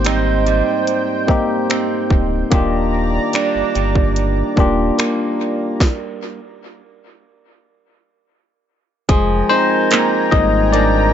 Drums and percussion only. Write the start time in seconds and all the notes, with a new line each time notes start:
0.05 finger snap, closed hi-hat
0.47 closed hi-hat
0.87 closed hi-hat
1.28 kick
1.70 finger snap, closed hi-hat
2.10 kick
2.52 kick, closed hi-hat
3.33 finger snap, closed hi-hat
3.75 closed hi-hat
3.95 kick
4.16 closed hi-hat
4.57 kick
4.99 finger snap, closed hi-hat
5.80 kick, snare
9.09 kick, closed hi-hat
9.91 clap, closed hi-hat
10.32 kick
10.74 closed hi-hat